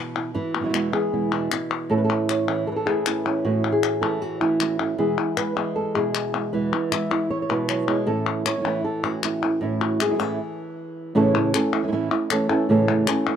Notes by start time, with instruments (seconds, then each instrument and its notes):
Already playing: nylon-string guitar B2 E3 B3 F#4
0.16 nylon-string guitar E4, clap
0.34 nylon-string guitar E3 E4, muted nylon-string guitar stroke
0.55 nylon-string guitar B3
0.60 nylon-string guitar B2 E3 G#3 B3 E4 F#4
0.65 nylon-string guitar B2 E3 G#3 B3 E4
0.69 nylon-string guitar B2 E3 G#3 B3 E4
0.74 nylon-string guitar E2 B2 E3 G#3 B3 E4, clap
0.92 nylon-string guitar E3 G#3 B3 E4 G#4
1.12 nylon-string guitar E2 B2 E3 G#3 B3 E4
1.31 nylon-string guitar B2 D4
1.51 nylon-string guitar E4, muted nylon-string guitar stroke, clap
1.71 clap
1.90 nylon-string guitar A2 E3 A3 C#4 E4 A4
1.98 nylon-string guitar B4
2.04 nylon-string guitar A4
2.29 nylon-string guitar C#5, clap
2.48 nylon-string guitar E3 A3 C#4 E4, clap
2.67 nylon-string guitar A4, muted nylon-string guitar stroke
2.72 nylon-string guitar B4
2.76 nylon-string guitar A4
2.86 nylon-string guitar E3 A3 C#4 E4 G#4
3.06 nylon-string guitar E3 A3 C#4 E4, clap
3.25 nylon-string guitar A3 C#4 E4, clap
3.44 nylon-string guitar A2 E3 A3 C#4 E4 F#4
3.72 nylon-string guitar G#4
3.83 clap
4.01 nylon-string guitar E3 A3 C#4 E4 A4
4.21 nylon-string guitar F#4, muted nylon-string guitar stroke
4.40 nylon-string guitar E3 A3 C#4 E4
4.60 nylon-string guitar E3 A3 C#4 E4 F#4, clap
4.79 nylon-string guitar A3 C#4 E4, clap
4.98 nylon-string guitar E2 B2 E3 G#3 B3 E4 G#4
5.17 nylon-string guitar E3 G#3 B3 E4
5.37 nylon-string guitar E3 G#3 B3 B4, clap
5.56 nylon-string guitar E3 G#3 B3 E4
5.76 nylon-string guitar A4, muted nylon-string guitar stroke
5.95 nylon-string guitar B2 E3 G#3 B3 E4 G#4
6.15 clap
6.34 nylon-string guitar E3 G#3 B3 E4, clap
6.53 nylon-string guitar E2 B2 E3 G#3 B3 E4 B4
6.72 nylon-string guitar E3 G#3 B3 E4
6.92 nylon-string guitar E3 G#3 B3 E4 E5, clap
7.11 nylon-string guitar E3 G#3 B3 E4, clap
7.30 nylon-string guitar C#5, muted nylon-string guitar stroke
7.42 nylon-string guitar C#5
7.49 nylon-string guitar B2 E3 G#3 B3 E4 B4
7.68 nylon-string guitar F#3, clap
7.88 nylon-string guitar E3 G#3 B3 E4
8.07 nylon-string guitar A2 E3 A3 C#4 E4 A4
8.46 nylon-string guitar A3 C#4 E4 C#5, clap
8.56 nylon-string guitar E3 A3 C#4 E4
8.61 nylon-string guitar E3 A3 C#4 E4
8.65 nylon-string guitar A2 E3 A3 C#4 E4, clap
8.84 nylon-string guitar A4, muted nylon-string guitar stroke
9.03 nylon-string guitar E3 A3 C#4 E4 F#4
9.23 nylon-string guitar E3 A3 C#4 E4, clap
9.43 nylon-string guitar A3 C#4 E4, clap
9.61 nylon-string guitar A2 E3 A3 C#4 E4
9.82 nylon-string guitar F#4
10.00 nylon-string guitar A3 C#4 E4 G#4, clap
10.06 nylon-string guitar E3 A3 C#4 E4
10.10 nylon-string guitar E3 A3 C#4 E4
10.14 nylon-string guitar E3 A3 C#4 E4
10.19 nylon-string guitar A2 E3 A3 C#4 E4 A4, clap
11.15 nylon-string guitar A2 C#3 E3 A3 C#4 E4 A4
11.35 nylon-string guitar A3 C#4 E4
11.54 nylon-string guitar E3 A3 C#4 A4, muted nylon-string guitar stroke, clap
11.73 nylon-string guitar A3 C#4 E4, clap
11.83 nylon-string guitar E3 A3 C#4 E4
11.87 nylon-string guitar E3 A3 C#4 E4
11.92 nylon-string guitar A2 E3 A3 C#4 E4, muted nylon-string guitar stroke
12.11 nylon-string guitar A3 C#4 E4
12.30 nylon-string guitar E3 A3 C#4 A4, muted nylon-string guitar stroke, clap
12.49 nylon-string guitar E3 A3 C#4 E4 A4, clap
12.69 nylon-string guitar A2 C#3 E3 A3 C#4 E4 A4
12.88 nylon-string guitar A3 C#4 E4
13.07 nylon-string guitar E3 A3 C#4 A4, muted nylon-string guitar stroke, clap
13.27 nylon-string guitar A3 C#4 E4